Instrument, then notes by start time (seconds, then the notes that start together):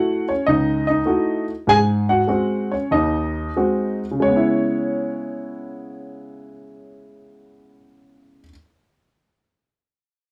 grand piano
Already playing: A3 E4 F#4 F#5
0.29 C#4 C#5
0.47 C#2 D#4 D#5
0.87 D#4 D#5
1.06 A3 E4 F#4
1.67 G#2 G#4 G#5
2.09 F#4 F#5
2.28 G#3 C4 F#4
2.72 C#4 C#5
2.91 D#2 D#4 D#5
3.57 G#3 C4 F#4
4.11 C#3
4.20 G#3 C#5
4.28 B3
4.36 E4